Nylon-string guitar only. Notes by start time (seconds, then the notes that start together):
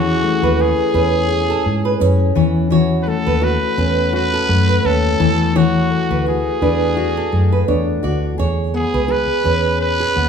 Already playing: C#5
0.43 B4
0.94 B4
1.50 A4
1.85 B4
2.01 C#5
2.36 C#5
2.72 C#5
3.27 B4
3.78 B4
4.33 A4
4.69 B4
5.21 A4
5.56 C#5
6.11 B4
6.62 B4
7.17 A4
7.52 B4
7.68 C#5
8.04 D5
8.39 C#5
8.94 B4
9.45 B4
10.00 G#4